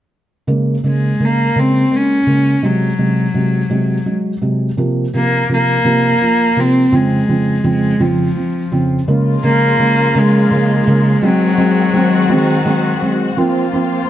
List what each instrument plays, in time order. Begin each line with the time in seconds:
0.47 felt piano C#3 G#3 A#3
0.84 felt piano C#3 G#3 A#3
0.88 cello G#3
1.20 felt piano C#3 G#3 A#3
1.25 cello A#3
1.56 felt piano C#3 G#3 A#3, cello C4
1.91 felt piano G#3 A#3
1.96 cello C#4
2.27 felt piano C#3 G#3 A#3
2.62 felt piano C3 F#3 G#3, cello F#3
2.98 felt piano C3 F#3 G#3
3.34 felt piano C3 F#3 G#3
3.70 felt piano C3 F#3 G#3
4.06 felt piano F#3 G#3
4.42 felt piano C3 F#3 G#3
4.77 felt piano C3 F3 A#3
5.14 felt piano C3 F3 A#3, cello A#3
5.49 felt piano C3 F3 A#3
5.53 cello A#3
5.85 felt piano C3 F3 A#3
6.21 felt piano F3 A#3
6.56 felt piano C3 F3 A#3, cello C4
6.92 felt piano F2 C#3 F3 C4
6.96 cello G#3
7.28 felt piano F2 C#3 F3 C4
7.64 felt piano F2 C#3 F3 C4
7.68 cello G#3
8.00 felt piano F2 C#3 F3 C4, cello F3
8.36 felt piano F3 C4
8.72 felt piano F2 C#3 F3 C4
9.06 string section C#3 F3 G#3 A#3 F4, felt piano C#3 G#3 A#3
9.43 felt piano C#3 G#3 A#3, cello A#3
9.79 felt piano C#3 G#3 A#3
10.15 felt piano C#3 G#3 A#3, cello G#3
10.51 felt piano C#3 G#3 A#3
10.87 felt piano C#3 G#3 A#3
11.22 string section D#3 F#3 C4 F#4, felt piano F#3 G#3 C4
11.27 cello F#3
11.58 felt piano F#3 G#3 C4
11.94 felt piano F#3 G#3 C4
12.29 felt piano F#3 G#3 C4
12.33 cello D#3
12.66 felt piano F#3 G#3 C4
13.02 felt piano F#3 G#3 C4
13.37 felt piano F3 A#3 C4, string section A#3 C4 F4
13.73 felt piano F3 A#3 C4